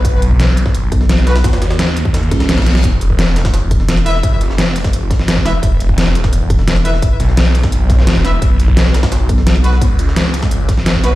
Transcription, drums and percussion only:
0.05 kick, closed hi-hat
0.22 closed hi-hat
0.31 kick
0.40 snare, closed hi-hat
0.48 snare
0.57 closed hi-hat
0.66 kick, snare
0.74 closed hi-hat
0.92 kick, closed hi-hat
1.01 snare
1.09 snare, closed hi-hat
1.18 closed hi-hat
1.27 snare, closed hi-hat
1.36 snare, closed hi-hat
1.44 kick, snare, closed hi-hat
1.53 snare, closed hi-hat
1.62 snare, closed hi-hat
1.71 snare, closed hi-hat
1.79 snare, closed hi-hat
1.88 snare
1.97 closed hi-hat
2.05 kick
2.14 snare, closed hi-hat
2.23 closed hi-hat
2.31 kick, snare, closed hi-hat
2.40 snare, closed hi-hat
2.49 snare, closed hi-hat
2.58 kick, snare, closed hi-hat
2.62 snare, closed hi-hat
2.66 snare, closed hi-hat
2.75 snare
2.84 kick, closed hi-hat
3.01 closed hi-hat
3.10 kick
3.19 snare, closed hi-hat
3.27 snare
3.36 snare, closed hi-hat
3.45 kick, snare, closed hi-hat
3.54 snare, closed hi-hat
3.71 kick, closed hi-hat
3.80 snare
3.89 snare, closed hi-hat
3.97 snare, closed hi-hat
4.06 snare, closed hi-hat
4.15 snare
4.23 kick, closed hi-hat
4.41 snare, closed hi-hat
4.50 snare
4.58 snare, closed hi-hat
4.67 snare
4.76 closed hi-hat, open hi-hat
4.84 kick, snare
4.93 closed hi-hat
5.11 kick, snare, closed hi-hat
5.19 snare
5.28 snare, closed hi-hat
5.37 kick
5.45 snare, closed hi-hat
5.63 kick, closed hi-hat
5.80 closed hi-hat
5.89 kick
5.98 snare, closed hi-hat
6.07 snare
6.15 closed hi-hat
6.24 kick, snare
6.33 closed hi-hat
6.50 kick, closed hi-hat
6.59 snare
6.68 snare, closed hi-hat
6.76 snare, closed hi-hat
6.85 snare, closed hi-hat
6.94 snare
7.02 kick, closed hi-hat
7.20 snare, closed hi-hat
7.29 snare
7.37 snare, closed hi-hat
7.46 snare
7.55 closed hi-hat, open hi-hat
7.63 kick, snare
7.72 closed hi-hat
7.90 kick, snare, closed hi-hat
7.98 snare
8.07 snare, closed hi-hat
8.16 kick
8.25 snare, closed hi-hat
8.42 kick, closed hi-hat
8.60 closed hi-hat
8.68 kick
8.77 snare, closed hi-hat
8.86 snare
8.94 snare, closed hi-hat
9.03 kick, snare, closed hi-hat
9.12 snare, closed hi-hat
9.29 kick, closed hi-hat
9.38 snare
9.47 snare, closed hi-hat
9.55 snare, closed hi-hat
9.64 snare, closed hi-hat
9.73 snare
9.81 kick, closed hi-hat
9.99 snare, closed hi-hat
10.08 snare
10.16 snare, closed hi-hat
10.25 snare
10.34 closed hi-hat, open hi-hat
10.43 kick, snare
10.51 closed hi-hat
10.69 kick, snare, closed hi-hat
10.77 snare
10.86 snare, closed hi-hat
10.95 kick
11.04 snare, closed hi-hat

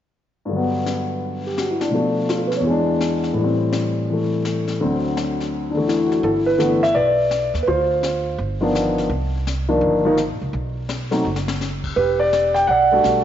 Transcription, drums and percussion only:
0.51 brush sweep
0.86 snare, hi-hat pedal
1.22 brush sweep
1.58 snare, hi-hat pedal
1.81 snare
1.93 brush sweep
2.29 snare, hi-hat pedal
2.52 snare
2.65 brush sweep
3.01 snare, hi-hat pedal
3.23 snare
3.36 brush sweep
3.73 snare, hi-hat pedal
4.08 brush sweep
4.45 snare, hi-hat pedal
4.67 snare
4.81 brush sweep
5.17 snare, hi-hat pedal
5.40 snare
5.53 brush sweep
5.89 snare, hi-hat pedal
6.12 snare
6.24 brush sweep
6.60 snare, hi-hat pedal
6.83 snare
6.96 brush sweep
7.31 snare, hi-hat pedal
7.55 snare
7.67 brush sweep
8.03 snare, hi-hat pedal
8.39 brush sweep
8.75 snare, hi-hat pedal
8.98 snare
9.11 brush sweep
9.47 snare, hi-hat pedal
9.82 brush sweep
10.17 snare, hi-hat pedal
10.53 brush sweep
10.89 snare, hi-hat pedal
11.12 snare
11.36 snare
11.48 snare
11.61 snare, hi-hat pedal
11.84 kick, crash
11.97 brush sweep
12.33 snare, hi-hat pedal
12.55 snare
12.69 brush sweep
13.04 snare, hi-hat pedal

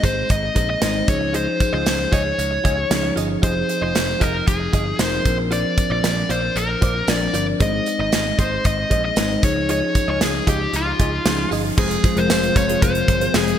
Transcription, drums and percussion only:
0.03 kick, closed hi-hat, tambourine
0.29 kick, closed hi-hat, tambourine
0.56 kick, closed hi-hat, tambourine
0.82 snare, closed hi-hat, tambourine
1.08 kick, closed hi-hat, tambourine
1.34 closed hi-hat
1.60 kick, closed hi-hat, tambourine
1.86 snare, closed hi-hat, tambourine
2.12 kick, closed hi-hat, tambourine
2.39 closed hi-hat, tambourine
2.65 kick, closed hi-hat, tambourine
2.91 snare, closed hi-hat, tambourine
3.17 closed hi-hat, tambourine
3.43 kick, closed hi-hat, tambourine
3.69 closed hi-hat, tambourine
3.95 snare, closed hi-hat, tambourine
4.21 kick, closed hi-hat, tambourine
4.47 kick, closed hi-hat, tambourine
4.73 kick, closed hi-hat, tambourine
4.99 snare, closed hi-hat, tambourine
5.25 kick, closed hi-hat, tambourine
5.51 closed hi-hat, tambourine
5.78 kick, closed hi-hat, tambourine
6.04 snare, closed hi-hat, tambourine
6.30 closed hi-hat, tambourine
6.56 closed hi-hat, tambourine
6.82 kick, closed hi-hat, tambourine
7.08 snare, closed hi-hat, tambourine
7.34 closed hi-hat, tambourine
7.60 kick, closed hi-hat, tambourine
7.86 closed hi-hat, tambourine
8.12 snare, closed hi-hat, tambourine
8.39 kick, closed hi-hat, tambourine
8.64 kick, closed hi-hat, tambourine
8.91 kick, closed hi-hat
9.16 snare, closed hi-hat, tambourine
9.43 kick, closed hi-hat, tambourine
9.69 closed hi-hat, tambourine
9.95 kick, closed hi-hat, tambourine
10.21 snare, closed hi-hat, tambourine
10.47 kick, closed hi-hat, tambourine
10.74 closed hi-hat, tambourine
10.99 kick, closed hi-hat
11.26 snare, closed hi-hat, tambourine
11.52 open hi-hat, tambourine
11.78 kick, crash
11.91 closed hi-hat
12.04 kick, closed hi-hat, tambourine
12.17 closed hi-hat
12.30 snare, tambourine
12.43 closed hi-hat
12.56 kick, closed hi-hat, tambourine
12.69 closed hi-hat
12.82 kick, closed hi-hat, tambourine
12.95 closed hi-hat
13.08 kick, closed hi-hat
13.21 closed hi-hat
13.34 snare, tambourine
13.48 closed hi-hat

